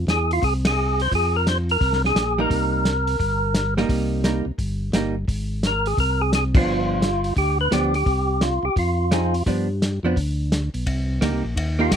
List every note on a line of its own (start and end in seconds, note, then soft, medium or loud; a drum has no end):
0.07 0.40 E2 medium
0.07 0.32 G#4 medium
0.07 snare medium
0.07 closed hi-hat soft
0.31 0.44 F4 medium
0.31 open hi-hat soft
0.42 1.08 C2 medium
0.42 0.54 G#4 medium
0.42 kick soft
0.42 open hi-hat soft
0.65 1.02 G#4 medium
0.65 snare medium
0.65 ride medium
1.00 1.13 C5 medium
1.00 open hi-hat soft
1.11 1.77 F2 medium
1.11 1.36 G#4 loud
1.11 kick soft
1.11 open hi-hat soft
1.36 1.48 A#4 medium
1.47 1.58 C5 medium
1.47 snare medium
1.47 closed hi-hat medium
1.69 2.02 A#4 loud
1.69 open hi-hat soft
1.81 2.13 C2 medium
1.81 kick soft
1.81 open hi-hat soft
1.93 snare soft
2.04 2.40 G#4 loud
2.04 snare soft
2.15 2.47 A#1 medium
2.15 snare medium
2.15 closed hi-hat medium
2.38 2.83 G3 medium
2.38 2.83 A#3 medium
2.38 2.83 D#4 medium
2.38 3.74 A#4 medium
2.50 3.16 C2 medium
2.50 kick soft
2.50 open hi-hat soft
2.85 snare medium
2.85 closed hi-hat medium
3.07 open hi-hat soft
3.19 3.85 G1 medium
3.19 kick soft
3.19 open hi-hat soft
3.54 snare medium
3.54 closed hi-hat medium
3.77 4.22 G3 medium
3.77 4.22 A#3 medium
3.77 4.22 D#4 medium
3.77 snare soft
3.89 4.42 C2 medium
3.89 kick soft
3.89 open hi-hat medium
4.24 4.44 G3 medium
4.24 4.44 A#3 medium
4.24 4.44 D#4 medium
4.24 snare medium
4.24 closed hi-hat medium
4.45 4.52 C2 soft
4.58 4.91 G1 medium
4.58 kick soft
4.58 open hi-hat soft
4.92 5.25 G1 medium
4.92 5.14 G3 medium
4.92 5.14 A#3 medium
4.92 5.14 D#4 medium
4.92 snare medium
4.92 closed hi-hat medium
5.28 5.94 G#1 medium
5.28 kick soft
5.28 open hi-hat soft
5.63 5.88 A#4 medium
5.63 snare medium
5.63 closed hi-hat soft
5.86 5.99 G#4 medium
5.86 open hi-hat soft
5.97 6.63 C2 medium
5.97 6.22 A#4 medium
5.97 kick soft
5.97 open hi-hat soft
6.21 6.32 G#4 medium
6.33 6.44 G#4 medium
6.33 snare medium
6.33 closed hi-hat medium
6.55 7.00 F3 medium
6.55 7.00 B3 medium
6.55 7.00 D4 medium
6.55 7.34 F4 medium
6.55 kick medium
6.55 crash medium
6.66 7.33 G1 medium
7.02 snare medium
7.02 closed hi-hat soft
7.24 open hi-hat soft
7.36 7.69 D2 medium
7.36 7.58 G4 medium
7.36 kick soft
7.36 open hi-hat soft
7.61 7.73 B4 loud
7.71 8.04 D2 medium
7.71 7.92 F3 medium
7.71 7.92 B3 medium
7.71 7.93 D4 medium
7.71 7.94 G4 medium
7.71 snare medium
7.71 closed hi-hat medium
7.94 8.44 G4 medium
7.94 open hi-hat soft
8.06 8.60 C2 medium
8.06 kick soft
8.06 open hi-hat soft
8.41 8.65 F4 medium
8.41 snare medium
8.41 closed hi-hat medium
8.63 8.69 C2 soft
8.63 8.77 G4 medium
8.76 9.43 F2 medium
8.76 9.43 F4 medium
8.76 kick soft
8.76 open hi-hat soft
9.11 9.32 F3 medium
9.11 9.32 C4 medium
9.11 9.32 D#4 medium
9.11 9.32 G#4 medium
9.11 snare medium
9.11 closed hi-hat medium
9.34 open hi-hat soft
9.46 10.00 G2 medium
9.46 9.67 F3 medium
9.46 9.67 B3 medium
9.46 9.67 D4 medium
9.46 kick soft
9.46 open hi-hat medium
9.82 snare medium
9.82 closed hi-hat medium
10.03 10.15 F2 medium
10.03 10.15 F3 medium
10.03 10.16 B3 medium
10.03 10.16 D4 medium
10.16 10.70 D2 medium
10.16 kick soft
10.16 open hi-hat soft
10.52 snare medium
10.52 closed hi-hat medium
10.74 10.86 B1 medium
10.74 open hi-hat soft
10.86 11.20 C2 medium
10.86 kick soft
10.86 ride medium
11.21 11.33 D2 loud
11.21 11.41 A#3 medium
11.21 11.42 D#4 soft
11.21 11.42 G4 medium
11.21 kick soft
11.21 snare medium
11.21 hi-hat pedal medium
11.21 ride medium
11.33 11.45 C2 medium
11.43 11.55 A#1 medium
11.56 11.90 D#2 medium
11.56 kick soft
11.56 ride medium
11.79 11.90 A#3 medium
11.79 11.91 D#4 medium
11.79 11.92 F4 medium
11.79 11.91 G4 medium
11.91 11.96 G2 medium
11.91 kick soft
11.91 snare medium
11.91 hi-hat pedal medium
11.91 ride medium